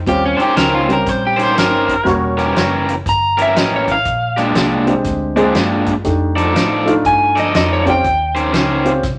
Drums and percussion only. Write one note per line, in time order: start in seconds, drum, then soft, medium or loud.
0.07 kick medium
0.07 closed hi-hat medium
0.40 closed hi-hat medium
0.57 snare loud
0.57 closed hi-hat medium
0.90 closed hi-hat medium
1.06 kick loud
1.06 snare soft
1.06 closed hi-hat medium
1.39 closed hi-hat medium
1.58 snare loud
1.58 closed hi-hat medium
1.88 kick medium
1.88 closed hi-hat medium
2.06 kick medium
2.06 snare soft
2.06 closed hi-hat medium
2.39 snare soft
2.39 closed hi-hat medium
2.56 snare loud
2.56 closed hi-hat medium
2.89 closed hi-hat medium
3.06 kick loud
3.06 closed hi-hat medium
3.38 closed hi-hat medium
3.56 snare loud
3.56 closed hi-hat medium
3.88 kick medium
3.88 closed hi-hat medium
4.05 kick medium
4.05 closed hi-hat medium
4.37 snare soft
4.37 closed hi-hat medium
4.55 snare loud
4.55 closed hi-hat medium
4.87 closed hi-hat medium
5.04 kick loud
5.04 snare soft
5.04 closed hi-hat medium
5.37 closed hi-hat medium
5.55 snare loud
5.55 closed hi-hat medium
5.86 kick medium
5.86 closed hi-hat medium
6.05 kick loud
6.05 snare soft
6.05 closed hi-hat medium
6.38 closed hi-hat medium
6.56 snare loud
6.56 closed hi-hat medium
6.88 closed hi-hat medium
7.05 kick loud
7.05 closed hi-hat medium
7.37 closed hi-hat medium
7.54 snare loud
7.54 closed hi-hat medium
7.87 kick medium
7.87 closed hi-hat medium
8.04 kick medium
8.04 closed hi-hat medium
8.36 closed hi-hat medium
8.54 snare loud
8.54 closed hi-hat medium
8.86 closed hi-hat medium
9.03 kick loud
9.03 snare soft
9.03 closed hi-hat medium